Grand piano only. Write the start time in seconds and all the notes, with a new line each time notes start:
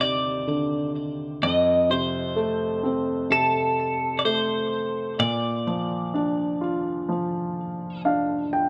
Already playing: D#2 C3 D3 D#3
0.47 D3
1.43 F2
1.90 C3
2.36 A3
2.83 C4
3.30 C3
4.25 A3
5.19 A#2
5.67 F3
6.14 D4
6.61 F4
7.09 F3
8.05 D4 F5
8.53 G5